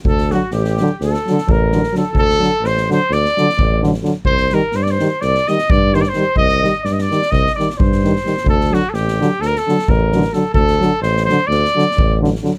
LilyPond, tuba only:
\new Staff \with { instrumentName = "Tuba" } { \clef bass \time 9/8 \tempo 4. = 86 d,4 a,,4 d,8 r8 a,,4. | d,4 a,,4 d,8 r8 a,,4. | c,4 g,4 c,8 r8 g,4. | c,4 g,4 c,8 r8 g,4. |
d,4 a,,4 d,8 r8 a,,4. | d,4 a,,4 d,8 r8 a,,4. | }